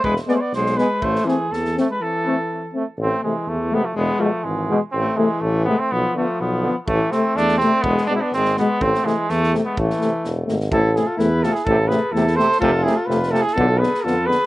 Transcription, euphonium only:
\new Staff \with { instrumentName = "Euphonium" } { \time 2/4 \key a \minor \tempo 4 = 124 r8 b8 r8 b8 | r8 c'8 r8 c'8 | r8 c'8 r8 c'8 | r8 a8 r8 a8 |
r8 gis8 r8 gis8 | r8 a8 r8 a8 | r8 b8 r8 b8 | r8 a8 r8 a8 |
r8 gis8 r8 gis8 | r8 a8 r8 a8 | r8 a8 r8 a8 | a8 a8 a8 a8 |
a8 a8 a8 a8 | a8 a8 a8 a8 | b8 b8 b8 b8 | }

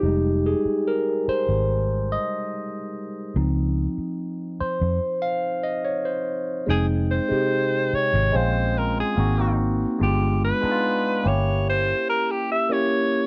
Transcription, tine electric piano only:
<<
  \new Staff \with { instrumentName = "Tine electric piano" } { \time 4/4 \key f \minor \tempo 4 = 72 g'8 aes'8 bes'8 c''4 ees''8 r4 | r4. c''8. f''8 ees''16 des''16 c''8 r16 | <aes c' ees' g''>8. <c aes ees' g'>4~ <c aes ees' g'>16 <aes c' des' f'>8. r16 <bes c' ees' ges'>16 <bes c' ees' ges'>8. | <aes b d' f'>8. <aes b d' ees' f'>8. <bes des' e' g'>4. r16 <bes des' e' g'>8. | }
  \new Staff \with { instrumentName = "Tine electric piano" } { \time 4/4 \key f \minor <g aes ees'>8 r2. r8 | <f c' ees'>1 | r1 | r1 | }
>>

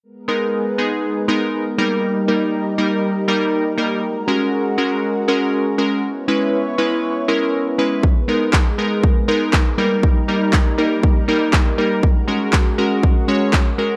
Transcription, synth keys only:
\new Staff \with { instrumentName = "Synth keys" } { \time 4/4 \key gis \minor \tempo 4 = 120 r8 <gis b dis' ais'>8 r8 <gis b dis' gis'>8 r8 <gis b dis' ais'>8 r8 <g ais dis' ais'>8~ | <g ais dis' ais'>8 <g ais dis' ais'>8 r8 <g ais dis' ais'>8 r8 <g ais dis' ais'>8 r8 <g ais dis' ais'>8 | r8 <gis cis' fis' ais'>8 r8 <gis cis' fis' ais'>8 r8 <gis cis' fis' ais'>8 r8 <gis cis' fis' ais'>8 | r8 <gis cis' e' b'>8 r8 <gis cis' e' b'>8 r8 <gis cis' e' ais'>8 r8 <gis cis' e' b'>8 |
r8 <gis b dis' ais'>8 r8 <gis b dis' ais'>8 r8 <gis b dis' ais'>8 r8 <g ais dis' ais'>8~ | <g ais dis' ais'>8 <g ais dis' ais'>8 r8 <g ais dis' ais'>8 r8 <g ais dis' ais'>8 r8 <g ais dis' ais'>8 | r8 <gis cis' fis' ais'>8 r8 <gis cis' fis' ais'>8 r8 <gis cis' fis' cis''>8 r8 <gis cis' fis' ais'>8 | }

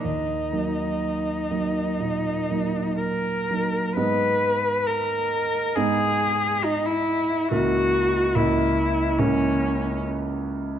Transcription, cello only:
\new Staff \with { instrumentName = "Cello" } { \time 4/4 \key ees \minor \tempo 4 = 67 ees'2. bes'4 | \key gis \minor b'4 ais'4 gis'4 dis'16 e'8. | fis'4 e'4 cis'4 r4 | }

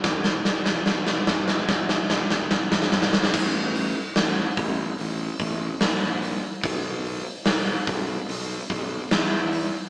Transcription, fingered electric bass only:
\new Staff \with { instrumentName = "Fingered electric bass" } { \clef bass \time 4/4 \key e \mixolydian \tempo 4 = 73 e,,8 e,,8 e,,8 e,,8 e,,8 e,,8 e,,8 b,,8 | a,,4 a,,8 a,,8 a,,8 a,,8 bes,,4 | b,,4 b,,8 b,,8 b,,8 b,,8 e,4 | }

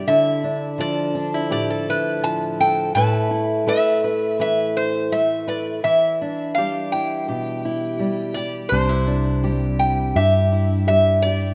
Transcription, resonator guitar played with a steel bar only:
\new Staff \with { instrumentName = "Resonator guitar played with a steel bar" } { \time 4/4 \key c \major \tempo 4 = 83 e''4 d''4 d''8 b'8 a''8 g''8 | a''4 e''4 e''8 c''8 e''8 d''8 | e''4 f''8 g''2 d''8 | c''4. g''8 e''4 e''8 d''8 | }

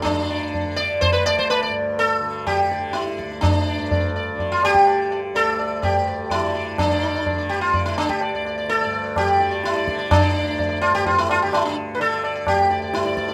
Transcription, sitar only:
\new Staff \with { instrumentName = "Sitar" } { \time 7/4 \tempo 4 = 126 << { r8 d''8 r1 r8 d''8 r8 d''8 | r8 d''8 d''8 d''8 d''8 r8 d''8 d''8 d''8 d''8 d''8 d''8 d''8 d''8 | r16 d''16 d''16 d''8 d''8 r16 d''8 r8 d''16 d''16 d''16 d''8 d''16 d''16 d''8 d''16 d''16 d''8 d''16 d''16 d''16~ | d''16 d''16 d''16 d''16 d''16 d''8 r2 r8 d''16 d''16 d''8 r16 d''16 d''8 d''16 d''16 d''16 | } \\ { d'4. d''8 c''16 b'16 d''16 c''16 b'16 d''16 r8 a'4 g'4 e'4 | d'4. r8. f'16 g'4~ g'16 r16 a'4 g'4 e'4 | d'4. g'16 f'8 e'16 d'16 g'16 r4 a'4 g'4 e'4 | d'4. f'16 g'16 f'16 e'16 f'16 g'16 e'16 d'16 r16. b'32 a'4 g'4 e'4 | } >> }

